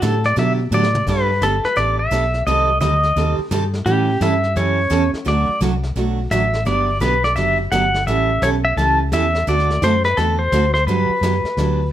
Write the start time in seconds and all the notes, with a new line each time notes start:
0.02 A2 D3 F#3 B3 D4 G4 A4, snare, hi-hat pedal
0.24 D5, snare
0.36 B2 D3 F#3 B3 D4 G4 E5, brush sweep, snare
0.71 A2 D3 F#3 B3 D4 G4 D5, hi-hat pedal
0.83 snare
0.95 mid tom
1.06 G2 G3 B3 D4 A4 B4, brush sweep, kick, snare, crash
1.41 G1 G3 B3 D4 A4, snare, hi-hat pedal
1.64 B4, snare
1.76 A1 G3 B3 D4 A4 D5, brush sweep, snare
1.99 E5
2.11 B1 G3 B3 D4 A4, snare, hi-hat pedal
2.34 snare
2.47 C2 C3 D#3 G3 C4 G4 A4 D#5, brush sweep, snare
2.81 D2 C3 D#3 G3 C4 G4 A4 D#5, snare, hi-hat pedal
3.03 snare
3.16 D#2 C3 D#3 G3 C4 G4 A4, brush sweep, snare
3.39 muted fingered electric bass stroke
3.51 G2 C3 D#3 G3 C4 G4 A4, snare, hi-hat pedal
3.73 snare
3.86 A2 E3 G3 C#4 E4 G4 A4, brush sweep, snare
4.21 G2 E3 G3 C#4 E4 A4 E5, snare, hi-hat pedal
4.44 snare
4.56 F#2 E3 G3 C#4 E4 A4 C#5, brush sweep, snare
4.90 E2 E3 G3 C#4 E4 A4, snare, hi-hat pedal
5.14 muted fingered electric bass stroke, snare
5.25 D2 D3 F#3 A3 D4 F#4 D5, brush sweep, snare
5.49 muted fingered electric bass stroke
5.61 C2 D3 F#3 A3 D4 F#4, snare, hi-hat pedal
5.83 snare
5.96 B1 D3 F#3 A3 D4 F#4, brush sweep, snare
6.31 A1 D3 F#3 A3 D4 F#4 E5, snare, hi-hat pedal
6.53 snare
6.65 G1 D3 F#3 B3 D4 G4 D5, brush sweep, snare
7.00 B1 D3 F#3 B3 D4 G4 B4, snare, hi-hat pedal
7.24 D5, snare
7.36 F#1 D3 F#3 B3 D4 G4 E5, brush sweep, snare
7.72 G1 D3 F#3 B3 D4 G4 F#5, snare, hi-hat pedal
7.94 snare
8.07 A1 E3 G3 C#4 E4 A4 E5, brush sweep, snare
8.42 B1 E3 G3 C#4 E4 A4 C#5, snare, hi-hat pedal
8.65 E5
8.77 C#2 E3 G3 C#4 E4 A4 A5, brush sweep, snare
9.12 E2 E3 G3 C#4 E4 A4 E5, snare, hi-hat pedal
9.35 snare
9.47 D2 D3 A3 C4 F#4 A4 D5, brush sweep, snare
9.59 snare
9.70 snare
9.82 F#2 D3 A3 C4 F#4 A4 C5, snare, hi-hat pedal
10.04 B4, snare
10.17 E2 D3 A3 C4 F#4 A4, brush sweep, snare
10.39 C5
10.52 D2 D3 A3 C4 F#4 A4, snare, hi-hat pedal
10.74 C5, snare
10.86 G2 D3 F#3 B3 D4 G4 B4, brush sweep, snare
11.09 muted fingered electric bass stroke
11.21 F#2 D3 F#3 B3 D4 G4, snare, hi-hat pedal
11.44 muted fingered electric bass stroke, snare
11.57 D2 D3 F#3 B3 D4 G4, brush sweep, snare